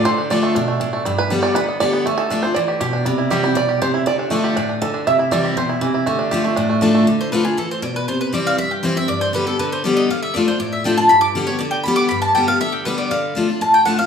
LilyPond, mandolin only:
\new Staff \with { instrumentName = "Mandolin" } { \time 4/4 \key d \dorian \tempo 4 = 239 r1 | r1 | r1 | r1 |
r1 | r1 | r1 | r8 c''8 b'8 gis'8 a'8 c''8 d''8 b'8 |
c''8 b'8 d''8 f''8 e''8 g'8 c''8 e''8 | d''8 c''8 b'8 a'8 b'8 c''8 d''8 ees''8 | f''8 e''8 d''8 c''8 d''8 e''8 g''8 a''8 | b''8 d'''8 r8 cis''8 d''8 g''8 b''8 d'''8 |
b''8 a''8 g''8 f''8 e''8 g'8 b'8 d''8 | f''4. r8 a''8 g''8 fis''8 f''8 | }